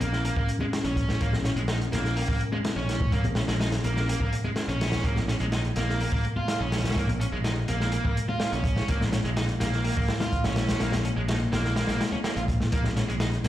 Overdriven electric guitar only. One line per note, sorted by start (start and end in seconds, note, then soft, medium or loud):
0.01 0.23 A#3 medium
0.25 0.35 A#3 medium
0.36 0.48 A#3 medium
0.61 0.65 G#3 medium
0.85 1.19 C#4 loud
1.20 1.32 A#3 medium
1.45 1.49 C#4 loud
1.57 1.61 G#3 medium
1.68 1.76 D#4 loud
1.92 2.15 A#3 medium
2.16 2.27 A#3 medium
2.28 2.40 A#3 medium
2.52 2.57 G#3 medium
2.76 3.11 C#4 loud
3.12 3.24 A#3 medium
3.36 3.41 C#4 loud
3.48 3.53 G#3 medium
3.61 3.68 D#4 medium
3.85 4.07 A#3 medium
4.09 4.19 A#3 medium
4.21 4.32 A#3 medium
4.44 4.49 G#3 medium
4.69 5.03 C#4 loud
5.05 5.16 A#3 medium
5.29 5.33 C#4 loud
5.41 5.45 G#3 medium
5.53 5.60 D#4 medium
5.76 5.99 A#3 medium
6.01 6.12 A#3 medium
6.13 6.24 A#3 medium
6.37 6.59 F4 medium
6.61 6.95 C#4 loud
6.97 7.08 A#3 medium
7.21 7.25 C#4 loud
7.33 7.37 G#3 medium
7.44 7.52 D#4 loud
7.68 7.91 A#3 medium
7.92 8.03 A#3 medium
8.05 8.16 A#3 medium
8.29 8.51 F4 medium
8.52 8.87 C#4 loud
8.88 9.00 A#3 medium
9.13 9.17 C#4 loud
9.25 9.29 G#3 medium
9.37 9.44 D#4 loud
9.60 9.83 A#3 medium
9.84 9.95 A#3 medium
9.96 10.08 A#3 medium
10.20 10.43 F4 medium
10.45 10.79 C#4 loud
10.80 10.92 A#3 medium
11.05 11.09 C#4 loud
11.17 11.21 G#3 medium
11.28 11.36 D#4 loud
11.52 11.75 A#3 medium
11.76 11.87 A#3 medium
11.88 11.99 A#3 medium
12.12 12.17 C#4 medium
12.24 12.29 A#3 medium
12.36 12.41 F4 loud
12.73 12.84 A#3 medium
12.97 13.01 C#4 medium
13.09 13.13 G#3 medium
13.20 13.28 D#4 loud
13.45 13.48 A#3 medium